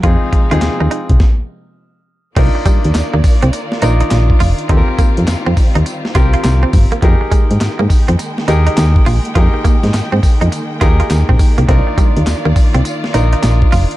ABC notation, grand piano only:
X:1
M:4/4
L:1/16
Q:"Swing 16ths" 1/4=103
K:Fphr
V:1 name="Grand piano"
[CEFA]2 z [CEFA]4- [CEFA] z8 | [K:Fdor] [DEFB]6 z4 [DEFB]4- [DEFB] z | [CFG=AB]6 z4 [CFGB]4- [CFGB] z | [EGAB]6 z4 [EGAB]4- [EGAB] z |
[EGAB]6 z4 [EGAB]4- [EGAB] z | [DEFB]6 z4 [DEFB]4- [DEFB] z |]